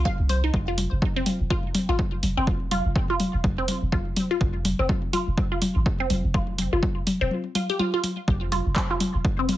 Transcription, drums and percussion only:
0.05 kick, high tom
0.29 open hi-hat, high tom
0.54 kick, high tom
0.78 open hi-hat, high tom
1.02 kick, high tom
1.26 open hi-hat, high tom
1.50 kick, high tom
1.75 open hi-hat, high tom
1.99 kick, high tom
2.23 open hi-hat, high tom
2.47 kick, high tom
2.71 open hi-hat, high tom
2.96 kick, high tom
3.20 open hi-hat, high tom
3.44 kick, high tom
3.68 open hi-hat, high tom
3.92 kick, high tom
4.16 open hi-hat, high tom
4.41 kick, high tom
4.65 open hi-hat, high tom
4.89 kick, high tom
5.13 open hi-hat, high tom
5.38 kick, high tom
5.62 open hi-hat, high tom
5.86 kick, high tom
6.10 open hi-hat, high tom
6.34 kick, high tom
6.58 open hi-hat, high tom
6.83 kick, high tom
7.07 open hi-hat, high tom
7.31 high tom
7.55 open hi-hat, high tom
7.69 open hi-hat
7.79 high tom
8.04 open hi-hat, high tom
8.28 kick, high tom
8.52 open hi-hat, high tom
8.76 kick, clap, high tom
9.00 open hi-hat, high tom
9.25 kick, high tom
9.49 open hi-hat, high tom

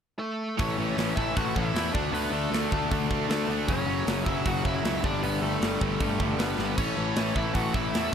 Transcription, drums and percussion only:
0.59 kick, open hi-hat
0.98 snare, open hi-hat
1.17 kick
1.37 kick, open hi-hat
1.56 kick
1.76 snare, open hi-hat
1.95 kick
2.15 open hi-hat
2.54 snare, open hi-hat
2.72 kick
2.92 kick, open hi-hat
3.11 kick
3.30 snare, open hi-hat
3.68 kick, open hi-hat
4.07 snare, open hi-hat
4.26 kick
4.46 kick, open hi-hat
4.65 kick
4.85 snare, open hi-hat
5.04 kick
5.23 open hi-hat
5.62 snare, open hi-hat
5.81 kick
6.00 kick, open hi-hat
6.20 kick
6.39 snare, open hi-hat
6.59 snare
6.78 kick, crash
7.16 snare, open hi-hat
7.36 kick
7.54 kick, open hi-hat
7.74 kick
7.94 snare, open hi-hat

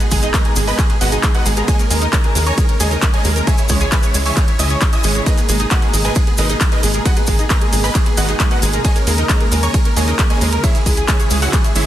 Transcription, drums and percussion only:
0.00 closed hi-hat, cabasa
0.11 kick, open hi-hat, cabasa
0.23 closed hi-hat, cabasa
0.34 kick, clap, closed hi-hat, ride, cabasa
0.45 closed hi-hat
0.56 open hi-hat, cabasa
0.67 open hi-hat, cabasa
0.79 kick, clap, closed hi-hat, ride, cabasa
0.90 closed hi-hat
1.01 open hi-hat, cabasa
1.12 closed hi-hat, cabasa
1.23 kick, clap, closed hi-hat, ride, cabasa
1.35 closed hi-hat
1.46 open hi-hat, cabasa
1.57 closed hi-hat, cabasa
1.68 kick, closed hi-hat, ride, cabasa
1.79 closed hi-hat, cabasa
1.91 open hi-hat, cabasa
2.01 closed hi-hat, cabasa
2.13 kick, clap, closed hi-hat, ride, cabasa
2.24 closed hi-hat
2.35 open hi-hat, cabasa
2.46 closed hi-hat, cabasa
2.58 kick, closed hi-hat, ride, cabasa
2.69 closed hi-hat
2.80 open hi-hat, cabasa
2.91 closed hi-hat, cabasa
3.02 kick, clap, closed hi-hat, ride, cabasa
3.14 closed hi-hat
3.24 open hi-hat, cabasa
3.36 closed hi-hat, cabasa
3.47 kick, closed hi-hat, ride, cabasa
3.58 closed hi-hat, cabasa
3.69 kick, open hi-hat, cabasa
3.81 closed hi-hat, cabasa
3.92 kick, clap, closed hi-hat, ride, cabasa
4.03 closed hi-hat, cabasa
4.14 open hi-hat, cabasa
4.26 open hi-hat, cabasa
4.37 kick, clap, closed hi-hat, ride, cabasa
4.48 closed hi-hat
4.59 open hi-hat, cabasa
4.70 closed hi-hat, cabasa
4.81 kick, clap, closed hi-hat, ride, cabasa
4.93 closed hi-hat, cabasa
5.03 open hi-hat, cabasa
5.15 closed hi-hat, cabasa
5.26 kick, closed hi-hat, ride, cabasa
5.38 closed hi-hat, cabasa
5.49 open hi-hat, cabasa
5.59 closed hi-hat, cabasa
5.71 kick, clap, closed hi-hat, ride, cabasa
5.82 closed hi-hat
5.94 open hi-hat, cabasa
6.05 closed hi-hat, cabasa
6.15 kick, closed hi-hat, ride, cabasa
6.27 closed hi-hat
6.38 open hi-hat, cabasa
6.50 closed hi-hat, cabasa
6.61 kick, clap, closed hi-hat, ride, cabasa
6.72 closed hi-hat
6.83 open hi-hat, cabasa
6.93 closed hi-hat, cabasa
7.05 kick, closed hi-hat, ride, cabasa
7.16 closed hi-hat, cabasa
7.27 kick, open hi-hat, cabasa
7.39 closed hi-hat, cabasa
7.50 kick, clap, closed hi-hat, ride, cabasa
7.61 closed hi-hat
7.73 open hi-hat, cabasa
7.84 open hi-hat, cabasa
7.95 kick, clap, closed hi-hat, ride, cabasa
8.06 closed hi-hat
8.17 open hi-hat, cabasa
8.28 closed hi-hat, cabasa
8.40 kick, clap, closed hi-hat, ride, cabasa
8.51 closed hi-hat
8.62 open hi-hat, cabasa
8.73 closed hi-hat, cabasa
8.85 kick, closed hi-hat, ride, cabasa
8.96 closed hi-hat, cabasa
9.07 open hi-hat, cabasa
9.17 closed hi-hat, cabasa
9.29 kick, clap, closed hi-hat, ride, cabasa
9.41 closed hi-hat
9.52 open hi-hat, cabasa
9.63 closed hi-hat, cabasa
9.74 kick, closed hi-hat, ride, cabasa
9.85 closed hi-hat
9.96 open hi-hat, cabasa
10.08 closed hi-hat, cabasa
10.18 kick, clap, closed hi-hat, ride, cabasa
10.30 closed hi-hat
10.41 open hi-hat, cabasa
10.52 closed hi-hat, cabasa
10.64 kick, closed hi-hat, ride, cabasa
10.75 closed hi-hat, cabasa
10.86 kick, open hi-hat, cabasa
10.97 closed hi-hat, cabasa
11.08 kick, clap, closed hi-hat, ride, cabasa
11.20 closed hi-hat, cabasa
11.30 open hi-hat, cabasa
11.42 open hi-hat, cabasa
11.53 kick, clap, closed hi-hat, ride, cabasa
11.64 closed hi-hat, cabasa
11.75 open hi-hat, cabasa

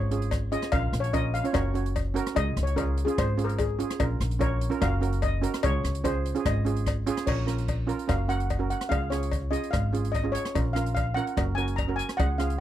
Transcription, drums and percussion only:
0.11 closed hi-hat
0.22 closed hi-hat
0.31 kick, cross-stick, closed hi-hat, cowbell
0.52 closed hi-hat
0.62 cross-stick, closed hi-hat
0.72 kick, closed hi-hat, cowbell
0.93 cross-stick, closed hi-hat
1.04 closed hi-hat
1.14 kick, closed hi-hat, cowbell
1.35 closed hi-hat
1.45 closed hi-hat
1.54 kick, cross-stick, closed hi-hat, cowbell
1.75 closed hi-hat
1.86 closed hi-hat
1.96 kick, closed hi-hat, cowbell
2.16 closed hi-hat
2.27 cross-stick, closed hi-hat
2.36 kick, closed hi-hat, cowbell
2.57 cross-stick, closed hi-hat
2.67 closed hi-hat
2.77 kick, closed hi-hat, cowbell
2.97 closed hi-hat
3.08 closed hi-hat
3.18 kick, cross-stick, closed hi-hat, cowbell
3.39 closed hi-hat
3.49 closed hi-hat
3.59 kick, closed hi-hat, cowbell
3.80 closed hi-hat
3.90 cross-stick, closed hi-hat
4.00 kick, closed hi-hat, cowbell
4.21 cross-stick, closed hi-hat
4.31 closed hi-hat
4.41 kick, closed hi-hat, cowbell
4.61 closed hi-hat
4.72 closed hi-hat
4.82 kick, cross-stick, closed hi-hat, cowbell
5.03 closed hi-hat
5.13 closed hi-hat
5.22 kick, closed hi-hat, cowbell
5.43 closed hi-hat
5.54 cross-stick, closed hi-hat
5.63 kick, closed hi-hat, cowbell
5.85 cross-stick, closed hi-hat
5.95 closed hi-hat
6.05 kick, closed hi-hat, cowbell
6.26 closed hi-hat
6.35 closed hi-hat
6.46 kick, cross-stick, closed hi-hat, cowbell
6.66 closed hi-hat
6.76 closed hi-hat
6.86 kick, cross-stick, closed hi-hat, cowbell
7.07 closed hi-hat
7.17 cross-stick, closed hi-hat
7.27 kick, crash, cowbell
7.48 cross-stick, closed hi-hat
7.58 closed hi-hat
7.68 kick, closed hi-hat, cowbell
7.89 closed hi-hat
7.99 closed hi-hat
8.09 kick, cross-stick, closed hi-hat, cowbell
8.30 closed hi-hat
8.40 closed hi-hat
8.50 kick, closed hi-hat, cowbell
8.70 closed hi-hat
8.81 cross-stick, closed hi-hat
8.91 kick, closed hi-hat, cowbell
9.12 cross-stick, closed hi-hat
9.23 closed hi-hat
9.32 kick, closed hi-hat, cowbell
9.53 closed hi-hat
9.64 closed hi-hat
9.73 kick, cross-stick, closed hi-hat, cowbell
9.94 closed hi-hat
10.05 closed hi-hat
10.14 kick, closed hi-hat, cowbell
10.35 closed hi-hat
10.45 cross-stick, closed hi-hat
10.55 kick, closed hi-hat, cowbell
10.76 cross-stick, closed hi-hat
10.86 closed hi-hat
10.96 kick, closed hi-hat, cowbell
11.17 closed hi-hat
11.27 closed hi-hat
11.37 kick, cross-stick, closed hi-hat, cowbell
11.58 closed hi-hat
11.68 closed hi-hat
11.78 kick, closed hi-hat, cowbell
11.99 closed hi-hat
12.09 cross-stick, closed hi-hat
12.19 kick, closed hi-hat, cowbell
12.40 cross-stick, closed hi-hat
12.50 closed hi-hat

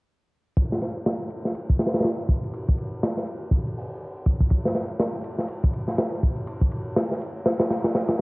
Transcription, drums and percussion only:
0.57 kick, ride
0.72 snare
0.82 snare, ride
1.06 snare, ride
1.30 ride
1.45 snare
1.55 ride
1.70 kick
1.79 snare, ride
1.87 snare, ride
1.94 snare, ride
1.99 snare, ride
2.04 snare, ride
2.29 kick, ride
2.44 ride
2.54 ride
2.69 kick
2.78 ride
3.03 snare, ride
3.17 snare
3.27 ride
3.51 kick, ride
3.67 ride
3.78 open hi-hat
4.26 kick, ride
4.41 kick
4.50 kick, ride
4.66 snare
4.75 snare, ride
5.00 snare, ride
5.24 ride
5.39 snare
5.48 ride
5.64 kick
5.73 ride
5.88 snare
5.98 snare, ride
6.23 kick, ride
6.36 ride
6.47 ride
6.61 kick
6.71 ride
6.96 snare, ride
7.11 snare
7.21 ride
7.46 snare, ride
7.59 snare, ride
7.70 snare, ride
7.84 snare, ride
7.95 snare, ride
8.08 snare, ride

